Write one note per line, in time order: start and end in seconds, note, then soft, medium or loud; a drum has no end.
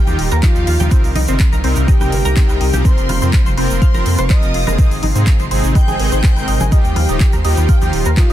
0.00 0.89 D#3 medium
0.00 2.81 G3 medium
0.00 4.75 A#3 medium
0.00 0.89 F4 medium
0.00 0.34 G4 loud
0.00 8.33 C5 medium
0.00 0.34 G5 loud
0.00 8.33 C6 medium
0.00 impact medium
0.07 0.16 D#2 medium
0.07 0.17 D#3 medium
0.07 0.17 D#4 medium
0.07 0.17 F4 medium
0.07 0.17 G4 loud
0.07 0.15 G4 medium
0.07 0.15 G5 medium
0.07 closed hi-hat soft
0.07 high conga medium
0.07 high woodblock soft
0.07 shaker soft
0.19 0.29 D#1 loud
0.19 open hi-hat loud
0.31 0.41 D#2 loud
0.31 0.37 A#4 loud
0.31 0.37 A#5 medium
0.31 closed hi-hat soft
0.31 cowbell medium
0.31 high woodblock medium
0.31 shaker medium
0.43 0.60 D#3 medium
0.43 0.60 D#4 medium
0.43 0.46 D#4 medium
0.43 0.60 F4 medium
0.43 1.06 F4 loud
0.43 0.60 G4 loud
0.43 0.46 D#5 medium
0.43 1.07 F5 loud
0.43 kick loud
0.43 clap loud
0.43 closed hi-hat loud
0.43 high conga medium
0.43 shaker medium
0.55 0.65 D#2 medium
0.55 closed hi-hat soft
0.55 shaker soft
0.66 0.77 D#2 loud
0.66 0.73 F4 medium
0.66 0.73 F5 medium
0.66 open hi-hat loud
0.66 high woodblock soft
0.80 0.89 D#2 medium
0.80 0.90 C3 medium
0.80 0.90 D#4 medium
0.80 0.90 F4 medium
0.80 0.90 G4 medium
0.80 0.85 G4 medium
0.80 0.85 G5 medium
0.80 closed hi-hat soft
0.80 high conga loud
0.80 shaker medium
0.91 1.02 C3 medium
0.91 6.68 C3 medium
0.91 1.03 C4 medium
0.91 0.97 C4 medium
0.91 1.02 D#4 medium
0.91 2.83 D#4 loud
0.91 1.03 A#4 medium
0.91 0.97 C5 medium
0.91 kick loud
0.91 closed hi-hat loud
0.91 high woodblock medium
0.91 shaker medium
1.04 1.13 C2 medium
1.04 open hi-hat medium
1.04 shaker soft
1.15 1.26 C2 loud
1.15 1.19 D#4 medium
1.15 1.19 D#5 medium
1.15 open hi-hat loud
1.15 high conga medium
1.15 high woodblock soft
1.28 1.37 G1 medium
1.28 1.38 C3 medium
1.28 1.38 C4 medium
1.28 1.36 C4 medium
1.28 1.38 D#4 medium
1.28 1.38 A#4 medium
1.28 1.36 C5 medium
1.28 closed hi-hat soft
1.28 shaker medium
1.39 kick loud
1.39 clap loud
1.39 closed hi-hat loud
1.39 high woodblock medium
1.39 shaker medium
1.53 1.61 C2 medium
1.53 1.56 A#4 medium
1.53 1.56 A#5 medium
1.53 closed hi-hat soft
1.53 high conga medium
1.53 shaker soft
1.64 1.74 C2 loud
1.64 1.81 C3 loud
1.64 1.81 C4 medium
1.64 1.72 C4 medium
1.64 1.81 D#4 medium
1.64 1.81 A#4 loud
1.64 1.72 C5 medium
1.64 open hi-hat loud
1.76 1.86 C2 medium
1.76 closed hi-hat soft
1.76 high woodblock soft
1.76 shaker medium
1.88 1.94 D#4 medium
1.88 2.87 G4 loud
1.88 1.94 D#5 medium
1.88 2.85 G5 loud
1.88 kick loud
1.88 closed hi-hat medium
1.88 shaker medium
2.01 2.10 C2 medium
2.01 2.11 C3 medium
2.01 2.11 C4 medium
2.01 2.11 D#4 medium
2.01 2.08 G4 medium
2.01 2.11 A#4 loud
2.01 2.08 G5 medium
2.01 closed hi-hat soft
2.01 high conga medium
2.01 high woodblock medium
2.01 shaker soft
2.12 2.22 G1 loud
2.12 open hi-hat loud
2.12 cowbell medium
2.25 2.34 C2 medium
2.25 2.30 A#4 loud
2.25 2.30 A#5 medium
2.25 closed hi-hat soft
2.25 high woodblock soft
2.25 shaker medium
2.36 2.54 C3 loud
2.36 2.54 C4 medium
2.36 2.40 C4 medium
2.36 2.54 D#4 medium
2.36 2.54 A#4 loud
2.36 2.40 C5 medium
2.36 kick loud
2.36 clap loud
2.36 closed hi-hat medium
2.36 high conga medium
2.36 shaker medium
2.49 2.58 C2 medium
2.49 closed hi-hat soft
2.49 high woodblock medium
2.49 shaker soft
2.61 2.71 C2 loud
2.61 2.66 D#4 medium
2.61 2.66 D#5 medium
2.61 open hi-hat loud
2.73 2.82 C2 medium
2.73 2.83 F3 medium
2.73 2.83 C4 medium
2.73 2.83 D#4 medium
2.73 2.83 G4 medium
2.73 2.79 G4 medium
2.73 2.79 G5 medium
2.73 closed hi-hat soft
2.73 high conga loud
2.73 shaker medium
2.85 4.77 F3 medium
2.85 2.96 F3 medium
2.85 2.96 C4 medium
2.85 2.91 C4 medium
2.85 4.77 F4 loud
2.85 2.96 F4 medium
2.85 2.96 A#4 medium
2.85 2.91 C5 medium
2.85 3.48 C5 loud
2.85 3.48 C6 loud
2.85 kick loud
2.85 closed hi-hat medium
2.85 high woodblock soft
2.85 shaker medium
2.98 3.07 F1 medium
2.98 closed hi-hat soft
2.98 shaker soft
3.09 3.19 F1 loud
3.09 3.12 F4 medium
3.09 3.13 F5 medium
3.09 open hi-hat loud
3.09 high conga medium
3.09 high woodblock medium
3.22 3.31 F2 medium
3.22 3.32 F3 medium
3.22 3.32 C4 medium
3.22 3.29 C4 medium
3.22 3.32 F4 medium
3.22 3.32 A#4 medium
3.22 3.29 C5 medium
3.22 closed hi-hat soft
3.22 shaker medium
3.33 kick loud
3.33 clap loud
3.33 closed hi-hat medium
3.33 high woodblock soft
3.33 shaker medium
3.46 3.55 F1 medium
3.46 3.49 C5 medium
3.46 3.49 C6 medium
3.46 closed hi-hat soft
3.46 high conga medium
3.46 shaker soft
3.57 3.68 F1 loud
3.57 3.75 F3 medium
3.57 3.75 C4 medium
3.57 3.66 C4 medium
3.57 3.75 F4 medium
3.57 3.75 A#4 loud
3.57 4.32 C5 loud
3.57 3.66 C5 medium
3.57 4.30 C6 loud
3.57 open hi-hat loud
3.57 high woodblock medium
3.70 3.79 F1 medium
3.70 closed hi-hat soft
3.70 shaker medium
3.82 3.87 F4 medium
3.82 3.87 F5 medium
3.82 kick loud
3.82 closed hi-hat medium
3.82 shaker medium
3.94 4.03 F1 medium
3.94 4.04 F3 loud
3.94 4.04 C4 medium
3.94 4.04 F4 medium
3.94 4.04 A#4 loud
3.94 4.02 A#4 medium
3.94 4.02 A#5 medium
3.94 closed hi-hat soft
3.94 high conga medium
3.94 high woodblock soft
3.94 shaker soft
4.06 4.16 F2 loud
4.06 open hi-hat loud
4.18 4.28 F1 loud
4.18 4.24 C5 loud
4.18 4.24 C6 medium
4.18 cowbell medium
4.18 high woodblock medium
4.18 shaker medium
4.30 4.47 F3 medium
4.30 4.33 C4 medium
4.30 4.47 C4 medium
4.30 4.47 F4 medium
4.30 4.47 A#4 loud
4.30 4.33 C5 medium
4.30 4.94 D#5 loud
4.30 4.94 D#6 loud
4.30 kick loud
4.30 clap loud
4.30 closed hi-hat medium
4.30 high conga medium
4.30 shaker medium
4.42 4.52 F1 medium
4.42 closed hi-hat soft
4.42 high woodblock soft
4.42 shaker soft
4.54 4.64 F1 loud
4.54 4.60 F4 medium
4.54 4.60 F5 medium
4.54 open hi-hat loud
4.67 4.76 F1 medium
4.67 4.77 G#2 medium
4.67 4.77 C4 medium
4.67 4.77 F4 medium
4.67 4.77 G#4 medium
4.67 4.72 A#4 medium
4.67 4.72 A#5 medium
4.67 closed hi-hat soft
4.67 high conga loud
4.67 high woodblock medium
4.67 shaker medium
4.78 4.90 G#2 medium
4.78 8.33 D#3 medium
4.78 6.70 G#3 medium
4.78 4.90 C4 medium
4.78 4.84 C4 medium
4.78 6.70 D#4 medium
4.78 4.90 D#4 medium
4.78 4.90 G#4 medium
4.78 4.84 C5 medium
4.78 kick loud
4.78 closed hi-hat medium
4.78 shaker medium
4.91 5.00 G#1 medium
4.91 open hi-hat medium
4.91 shaker soft
5.02 5.13 G#1 loud
5.02 5.06 D#4 medium
5.02 5.06 D#5 medium
5.02 open hi-hat loud
5.02 high conga medium
5.02 high woodblock soft
5.15 5.24 G#2 medium
5.15 5.25 G#2 medium
5.15 5.23 C4 medium
5.15 5.25 C4 medium
5.15 5.25 D#4 medium
5.15 5.25 G#4 loud
5.15 5.23 C5 medium
5.15 closed hi-hat soft
5.15 shaker medium
5.26 kick loud
5.26 clap loud
5.26 closed hi-hat medium
5.26 high woodblock medium
5.26 shaker medium
5.39 5.49 G#1 medium
5.39 5.43 C5 medium
5.39 5.43 C6 medium
5.39 closed hi-hat soft
5.39 high conga medium
5.39 shaker soft
5.51 5.61 G#1 loud
5.51 5.68 G#2 medium
5.51 5.68 C4 medium
5.51 5.59 C4 medium
5.51 5.68 D#4 medium
5.51 5.68 G#4 loud
5.51 5.60 C5 medium
5.51 open hi-hat loud
5.51 high woodblock soft
5.64 5.73 G#1 medium
5.64 closed hi-hat soft
5.64 shaker medium
5.75 5.81 D#4 medium
5.75 5.81 D#5 medium
5.75 6.63 G5 loud
5.75 6.63 G6 loud
5.75 kick loud
5.75 closed hi-hat medium
5.75 high woodblock medium
5.75 shaker medium
5.88 5.97 G#1 medium
5.88 5.97 G#2 medium
5.88 5.97 C4 medium
5.88 5.97 D#4 medium
5.88 5.96 G#4 medium
5.88 5.97 G#4 loud
5.88 5.96 G#5 medium
5.88 closed hi-hat soft
5.88 high conga medium
5.88 shaker soft
5.99 6.09 G#1 loud
5.99 6.17 G#2 loud
5.99 6.17 C4 medium
5.99 6.17 D#4 medium
5.99 6.17 G#4 loud
5.99 open hi-hat loud
5.99 cowbell medium
6.12 6.21 G#1 medium
6.12 6.17 C5 loud
6.12 6.17 C6 medium
6.12 closed hi-hat soft
6.12 high woodblock soft
6.12 shaker medium
6.23 6.27 C4 medium
6.23 6.27 C5 medium
6.23 kick loud
6.23 clap loud
6.23 closed hi-hat medium
6.23 high conga medium
6.23 shaker medium
6.36 6.45 G#1 medium
6.36 6.46 G#2 medium
6.36 6.46 C4 medium
6.36 6.46 D#4 medium
6.36 6.46 A#4 medium
6.36 closed hi-hat soft
6.36 high woodblock medium
6.36 shaker soft
6.48 6.58 G#1 loud
6.48 6.53 D#4 medium
6.48 6.53 D#5 medium
6.48 open hi-hat loud
6.60 6.70 G#1 medium
6.60 6.66 G#4 medium
6.60 6.66 G#5 medium
6.60 closed hi-hat soft
6.60 high conga loud
6.60 high woodblock soft
6.60 shaker medium
6.71 6.83 D#3 medium
6.71 8.33 G3 medium
6.71 8.33 A#3 medium
6.71 6.78 D#4 medium
6.71 6.83 D#4 medium
6.71 6.83 F4 medium
6.71 8.33 F4 medium
6.71 6.83 G4 medium
6.71 7.35 G4 loud
6.71 6.78 D#5 medium
6.71 7.36 G5 loud
6.71 kick loud
6.71 closed hi-hat medium
6.71 high woodblock soft
6.71 shaker medium
6.85 6.94 D#2 medium
6.85 closed hi-hat soft
6.85 shaker soft
6.96 7.06 D#2 loud
6.96 7.00 F4 medium
6.96 7.00 F5 medium
6.96 open hi-hat loud
6.96 high conga medium
6.96 high woodblock medium
7.09 7.18 D#1 medium
7.09 7.19 D#3 medium
7.09 7.16 D#4 medium
7.09 7.19 D#4 medium
7.09 7.19 F4 medium
7.09 7.19 G4 medium
7.09 7.17 D#5 medium
7.09 closed hi-hat soft
7.09 shaker medium
7.20 kick loud
7.20 clap loud
7.20 closed hi-hat medium
7.20 shaker medium
7.32 7.42 D#2 medium
7.32 7.36 A#4 medium
7.32 7.36 A#5 medium
7.32 closed hi-hat soft
7.32 high conga medium
7.32 high woodblock soft
7.32 shaker soft
7.45 7.55 D#2 loud
7.45 7.62 D#3 loud
7.45 7.62 D#4 medium
7.45 7.53 D#4 medium
7.45 7.62 F4 medium
7.45 7.62 G4 loud
7.45 8.08 G4 loud
7.45 7.53 D#5 medium
7.45 8.08 G5 loud
7.45 open hi-hat loud
7.57 7.66 D#2 medium
7.57 closed hi-hat soft
7.57 high woodblock medium
7.57 shaker medium
7.69 7.74 F4 medium
7.69 7.74 F5 medium
7.69 kick loud
7.69 closed hi-hat medium
7.69 shaker medium
7.82 7.90 D#2 medium
7.82 7.92 D#3 medium
7.82 7.92 D#4 medium
7.82 7.92 F4 medium
7.82 7.92 G4 loud
7.82 7.89 G4 medium
7.82 7.89 G5 medium
7.82 closed hi-hat soft
7.82 high conga medium
7.82 high woodblock soft
7.82 shaker soft
7.93 8.03 D#1 loud
7.93 open hi-hat loud
8.05 8.15 D#2 loud
8.05 8.11 A#4 loud
8.05 8.11 A#5 medium
8.05 closed hi-hat soft
8.05 cowbell medium
8.05 high woodblock medium
8.05 shaker medium
8.17 8.33 D#3 medium
8.17 8.33 D#4 medium
8.17 8.21 D#4 medium
8.17 8.33 F4 medium
8.17 8.33 F4 loud
8.17 8.33 G4 loud
8.17 8.21 D#5 medium
8.17 8.33 F5 loud
8.17 kick loud
8.17 clap loud
8.17 closed hi-hat medium
8.17 high conga medium
8.17 shaker medium